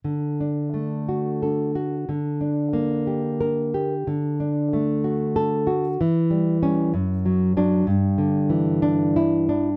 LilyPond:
\new Staff \with { instrumentName = "Nylon-string guitar" } { \time 6/8 \key d \major \tempo 4. = 61 << { r2 a'4 | r2 bes'4 | r2 a'4 | r4 cis'8 r4 d'8 |
r2 e'4 | } \\ { d8 d'8 a8 fis'4 fis'8 | d8 d'8 bes8 g'4 g'8 | d8 d'8 a8 fis'4 fis'8 | e8 g8 g8 fis,8 fis8 fis8 |
g,8 d8 e8 d'4 d'8 | } >> }